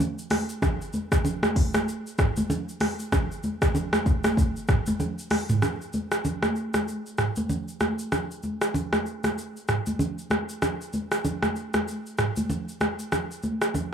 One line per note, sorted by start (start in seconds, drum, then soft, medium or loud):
0.00 low conga medium
0.00 shaker medium
0.18 shaker medium
0.30 cross-stick medium
0.30 open hi-hat medium
0.30 high conga medium
0.30 shaker medium
0.49 shaker medium
0.62 kick loud
0.62 cross-stick loud
0.62 low conga medium
0.62 shaker medium
0.81 shaker medium
0.93 high conga medium
0.93 shaker medium
1.12 kick loud
1.12 cross-stick loud
1.12 shaker loud
1.25 low conga medium
1.25 shaker loud
1.43 cross-stick loud
1.43 high conga medium
1.43 shaker medium
1.56 kick loud
1.56 open hi-hat medium
1.56 shaker medium
1.74 cross-stick loud
1.74 high conga medium
1.74 shaker loud
1.88 shaker medium
2.07 shaker medium
2.18 kick loud
2.18 cross-stick loud
2.18 mid tom medium
2.18 shaker medium
2.36 high conga medium
2.36 shaker loud
2.50 low conga medium
2.50 shaker medium
2.69 shaker medium
2.80 cross-stick medium
2.80 open hi-hat medium
2.80 high conga medium
2.80 shaker medium
2.99 shaker medium
3.12 kick loud
3.12 cross-stick loud
3.12 low conga medium
3.12 shaker medium
3.32 shaker medium
3.43 high conga medium
3.43 shaker medium
3.62 kick loud
3.62 cross-stick loud
3.62 shaker loud
3.75 low conga medium
3.75 shaker medium
3.93 cross-stick loud
3.93 high conga medium
3.93 shaker medium
4.06 kick medium
4.06 shaker medium
4.24 cross-stick loud
4.24 high conga medium
4.24 shaker loud
4.37 kick medium
4.37 shaker medium
4.56 shaker medium
4.68 kick loud
4.68 cross-stick medium
4.68 mid tom medium
4.68 shaker medium
4.86 high conga medium
4.86 shaker loud
5.00 low conga medium
5.00 shaker medium
5.19 shaker medium
5.31 cross-stick medium
5.31 open hi-hat medium
5.31 high conga medium
5.31 shaker medium
5.49 mid tom loud
5.49 high conga medium
5.49 shaker medium
5.62 cross-stick medium
5.62 low conga medium
5.62 shaker medium
5.81 shaker medium
5.93 high conga medium
5.93 shaker medium
6.12 cross-stick medium
6.12 shaker loud
6.25 low conga medium
6.25 shaker medium
6.43 cross-stick loud
6.43 high conga medium
6.43 shaker medium
6.56 shaker soft
6.74 cross-stick medium
6.74 high conga medium
6.74 shaker medium
6.88 shaker medium
7.06 shaker soft
7.18 cross-stick medium
7.18 mid tom medium
7.18 shaker medium
7.36 high conga medium
7.36 shaker loud
7.49 low conga medium
7.49 shaker medium
7.68 shaker medium
7.80 cross-stick medium
7.80 high conga medium
7.80 shaker medium
7.99 shaker medium
8.12 cross-stick medium
8.12 low conga medium
8.12 shaker medium
8.31 shaker medium
8.43 high conga medium
8.43 shaker medium
8.61 cross-stick loud
8.61 shaker loud
8.74 low conga medium
8.74 shaker medium
8.93 cross-stick loud
8.93 high conga medium
8.93 shaker medium
9.06 shaker medium
9.24 cross-stick medium
9.24 high conga medium
9.24 shaker loud
9.38 shaker medium
9.57 shaker soft
9.68 cross-stick medium
9.68 mid tom medium
9.68 shaker medium
9.86 high conga medium
9.86 shaker loud
9.99 low conga medium
9.99 shaker medium
10.18 shaker medium
10.30 cross-stick medium
10.30 high conga medium
10.30 shaker soft
10.49 shaker medium
10.62 cross-stick loud
10.62 low conga medium
10.62 shaker medium
10.81 shaker medium
10.93 high conga medium
10.93 shaker medium
11.12 cross-stick medium
11.12 shaker loud
11.25 low conga medium
11.25 shaker medium
11.43 cross-stick medium
11.43 high conga medium
11.43 shaker medium
11.56 shaker soft
11.74 cross-stick medium
11.74 high conga medium
11.74 shaker medium
11.88 shaker medium
12.06 shaker soft
12.18 cross-stick medium
12.18 mid tom medium
12.18 shaker medium
12.36 high conga medium
12.36 shaker loud
12.50 low conga medium
12.50 shaker medium
12.69 shaker medium
12.81 cross-stick medium
12.81 high conga medium
12.81 shaker medium
12.99 shaker medium
13.12 cross-stick medium
13.12 low conga medium
13.12 shaker medium
13.31 shaker medium
13.43 high conga medium
13.43 shaker medium
13.62 cross-stick loud
13.62 shaker loud
13.74 low conga medium
13.74 shaker medium